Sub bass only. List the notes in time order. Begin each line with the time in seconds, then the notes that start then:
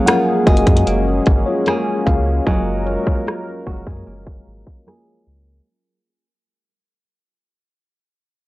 0.47 F#1
0.67 F#2
0.87 F#1
1.27 G#1
2.07 C#2
2.47 F#1
3.07 F#1
3.67 F#1
3.87 F#2
4.07 F#1
4.47 G#1
5.27 C#2